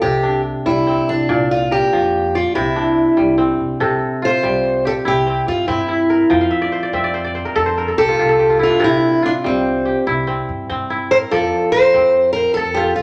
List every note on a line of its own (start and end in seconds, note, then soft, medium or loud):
0.00 0.51 C2 medium
0.00 1.34 C3 medium
0.00 1.11 A#3 medium
0.00 0.14 C4 medium
0.00 0.41 G4 medium
0.00 0.92 D5 medium
0.23 1.91 D4 medium
0.66 0.98 C2 medium
0.66 1.34 G3 medium
0.66 1.09 E4 medium
0.87 2.67 C4 medium
1.09 1.25 C2 medium
1.09 1.48 D4 medium
1.29 1.78 C2 medium
1.29 2.60 A#2 medium
1.29 2.34 D5 medium
1.51 1.72 F4 medium
1.71 2.36 G4 medium
1.71 2.99 A#4 medium
1.93 2.41 F2 medium
1.93 2.60 F3 medium
2.35 2.55 F4 medium
2.35 3.46 D5 medium
2.55 3.04 C2 medium
2.55 3.79 C3 medium
2.55 3.35 E4 medium
2.76 4.44 D4 medium
3.17 3.51 C2 medium
3.17 3.85 G3 medium
3.38 5.18 C4 medium
3.60 3.76 C2 medium
3.80 3.97 C2 loud
3.80 6.14 C3 medium
3.80 5.12 A4 medium
4.22 5.11 F4 medium
4.22 4.86 C5 loud
4.43 4.92 C2 medium
4.43 6.36 G3 medium
4.85 6.26 G4 medium
4.85 4.92 A4 loud
5.05 5.38 C2 medium
5.05 5.88 E4 medium
5.05 5.48 G4 loud
5.27 5.67 C4 medium
5.48 5.64 G2 medium
5.48 5.67 F4 medium
5.68 6.17 G2 loud
5.68 6.93 C4 medium
5.68 6.27 E4 medium
5.88 7.45 E4 medium
6.10 7.37 A#4 medium
6.30 6.47 F2 loud
6.30 8.64 F3 medium
6.30 7.24 G5 medium
6.41 7.00 F5 medium
6.51 6.93 E5 medium
6.62 6.82 D5 medium
6.72 7.14 C5 medium
6.83 7.03 D5 medium
6.93 7.42 F2 medium
6.93 8.73 C4 medium
6.93 7.97 E5 medium
7.04 7.24 D5 medium
7.14 7.34 C5 medium
7.24 8.35 D5 medium
7.35 7.65 C5 medium
7.45 7.77 A#4 medium
7.56 7.89 F2 loud
7.56 7.84 A4 medium
7.66 8.85 C5 medium
7.78 8.35 A#4 medium
7.88 8.29 A4 medium
7.97 8.14 C2 medium
7.97 8.19 G4 medium
7.97 8.57 A4 loud
8.08 8.19 F4 medium
8.18 8.67 C2 medium
8.18 8.49 F4 medium
8.18 8.39 G4 medium
8.29 8.80 A4 medium
8.39 9.81 G4 medium
8.50 9.22 F4 medium
8.59 9.28 E4 medium
8.59 8.84 F4 medium
8.70 10.38 D4 medium
8.80 8.98 C2 loud
8.80 11.14 C3 medium
8.80 10.12 A4 medium
8.84 9.22 E4 medium
9.22 9.31 D4 medium
9.22 10.13 F4 medium
9.44 9.93 C2 medium
9.44 11.37 G3 medium
9.44 10.04 C4 medium
9.85 11.27 G4 medium
10.07 10.39 C2 loud
10.07 10.90 E4 medium
10.27 10.69 C4 medium
10.49 10.65 G2 medium
10.70 11.18 G2 loud
10.70 11.93 C4 medium
10.90 12.47 E4 medium
11.11 11.72 A#4 medium
11.11 11.17 C5 loud
11.31 11.48 F2 medium
11.31 13.02 F3 medium
11.31 11.72 A4 medium
11.31 12.43 D5 medium
11.72 12.63 A#4 medium
11.72 12.31 C5 loud
11.94 12.43 F2 medium
11.94 13.02 C4 medium
12.33 12.53 A#4 loud
12.33 13.02 C5 medium
12.54 12.89 F2 medium
12.54 12.77 A4 medium
12.54 13.02 A4 medium
12.74 13.02 F4 medium
12.74 12.95 G4 medium
12.96 13.02 C2 medium
12.96 13.02 F4 medium